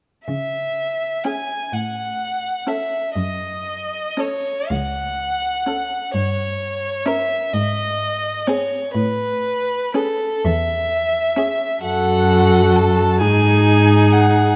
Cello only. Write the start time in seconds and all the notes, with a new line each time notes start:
0.28 C#3
1.73 A2
3.16 F#2
4.71 C#2
6.14 G2
7.53 G#2
8.95 A2
10.45 E2
11.84 F#2
13.22 G#2